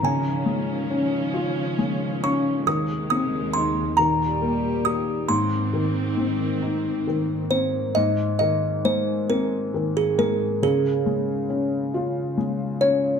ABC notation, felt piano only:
X:1
M:6/8
L:1/8
Q:3/8=46
K:Ab
V:1 name="Felt piano" clef=bass
D, A, D F A, D | E, C E E, B, G | A,, E, C E E, C | A,, E, A, C E, A, |
D, A, D F A, D |]